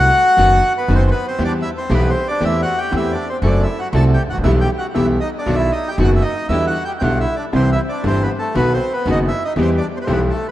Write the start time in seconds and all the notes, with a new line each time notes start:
Already playing: F#4 F#5
0.37 F#1 F#2 D#3 F#3 B3 D#4 F#4
0.78 B3 B4
0.88 F#1 F#2 D#3 F#3 B3 D#4 F#4
0.95 C4 C5
1.11 B3 B4
1.28 C4 C5
1.39 E2 E3 G3 B3 E4 G4
1.45 D4 D5
1.62 E4 E5
1.78 C4 C5
1.90 B1 B2 E3 G3 B3 E4 G4
1.94 B3 B4
2.10 C4 C5
2.28 D4 D5
2.40 E2 E3 A3 C4 G4
2.45 E4 E5
2.62 F#4 F#5
2.78 G4 G5
2.91 E2 E3 A3 C4 G4
2.96 E4 E5
3.12 D4 D5
3.29 C4 C5
3.42 F#1 F#2 F#3 A3 C4 F#4 A4
3.46 D4 D5
3.63 E4 E5
3.79 F#4 F#5
3.92 C2 C3 F#3 A3 C4 F#4 A4 A5
3.98 A4
4.14 G4 G5
4.26 G#1
4.30 A1 F#4 F#5
4.38 A#1
4.44 B1 B2 E3 G3 B3 E4 G4 E5
4.61 G4 G5
4.78 F#4 F#5
4.94 B1 B2 E3 G3 B3 E4 G4 E5
5.21 D#4 D#5
5.38 D4 D5
5.46 B1 B2 D#3 F#3 B3 D#4 F#4
5.55 E4 E5
5.72 D#4 D#5
5.88 G4 G5
5.98 F#1 F#2 D#3 F#3 B3 D#4 F#4
6.04 F#4 F#5
6.15 E5
6.22 D#4 D#5
6.49 E2 D3 E3 G3 B3 D4 E4 G4 E5
6.67 F#4 F#5
6.85 G4 G5
6.99 B1 B2 D3 G3 B3 D4 E4 G4 F#5 G5
7.05 F#4
7.20 E4 E5
7.36 D4 D5
7.52 C2 C3 E3 G3 C4 E4 G4 C5
7.72 E4 E5
7.89 D4 D5
8.03 G1 G2 E3 G3 C4 E4 G4 C5
8.09 C4
8.23 B3 B4
8.39 A3 A4
8.54 B1 B2 D#3 F#3 B3 D#4 F#4 B4
8.73 C4 C5
8.93 B3 B4
9.06 F#1 F#2 D#3 F#3 B3 D#4 F#4
9.11 D#4 D#5
9.28 E4 E5
9.45 D#4 D#5
9.56 E2 E3 G3 B3 E4 G4
9.62 C4 C5
9.78 D4 D5
9.97 C5
10.01 B4 C5
10.06 B1 B2 E3 G3 B3 C4 E4 G4
10.12 B3 B4
10.30 A3 A4